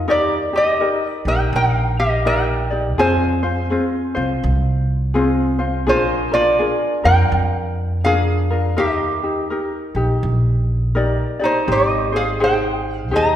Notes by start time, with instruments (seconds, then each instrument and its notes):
0.07 upright bass D#2, ukulele D#4 G4 A#4 D5, resonator guitar played with a steel bar G4 D5
0.53 ukulele D#4 G4, resonator guitar played with a steel bar G4
0.57 resonator guitar played with a steel bar D#5
0.80 ukulele D#4 G4 A#4
1.07 resonator guitar played with a steel bar D5
1.25 upright bass A#1, ukulele D#4 G4, resonator guitar played with a steel bar A#4 G5
1.53 upright bass A#1, resonator guitar played with a steel bar A#4 F#5
1.73 resonator guitar played with a steel bar F5
2.00 resonator guitar played with a steel bar G4 D#5
2.25 ukulele D#4 G4 A#4 D5, resonator guitar played with a steel bar A#4 G5
2.71 ukulele D#4 G4 D5
2.98 upright bass F2, ukulele C4 F4 G#4 C5, resonator guitar played with a steel bar C5 G#5
3.43 ukulele C4 F4 C5
3.70 ukulele C4 F4 G#4 C5
4.15 upright bass C2, ukulele C4 F4 C5
4.44 upright bass C2
5.14 ukulele C4 F4 G#4 C5
5.59 ukulele C4 F4 C5
5.87 upright bass A#1, ukulele D4 F4 G#4 A#4, resonator guitar played with a steel bar F4 C5
6.32 ukulele D4 F4 A#4, resonator guitar played with a steel bar F4 D5
6.59 ukulele D4 F4 G#4 A#4
7.04 upright bass F2, ukulele D4 F4 A#4, resonator guitar played with a steel bar A#4 G5
7.32 upright bass F2
8.04 ukulele D4 F4 G#4 A#4, resonator guitar played with a steel bar G#4 F5
8.51 ukulele D4 F4 A#4
8.77 upright bass D#2, ukulele D#4 G4 A#4, resonator guitar played with a steel bar G4 D#5
9.23 ukulele D#4 G4
9.50 ukulele D#4 G4 A#4
9.95 upright bass A#1, ukulele D#4 G4
10.23 upright bass A#1
10.95 ukulele D#4 G4 A#4 D5
11.40 ukulele D#4 G4 D5
11.44 resonator guitar played with a steel bar D#4 C5
11.68 upright bass G#1, ukulele D#4 G4 C5
11.72 resonator guitar played with a steel bar G4 D#5
12.12 ukulele D#4 G#4 C5, resonator guitar played with a steel bar G#4
12.16 resonator guitar played with a steel bar F5
12.40 ukulele D#4 G4 G#4 C5, resonator guitar played with a steel bar C5 G5
12.98 resonator guitar played with a steel bar F5
13.11 upright bass D#2, ukulele D#4 G4 G#4 C5
13.16 resonator guitar played with a steel bar D#5 A#5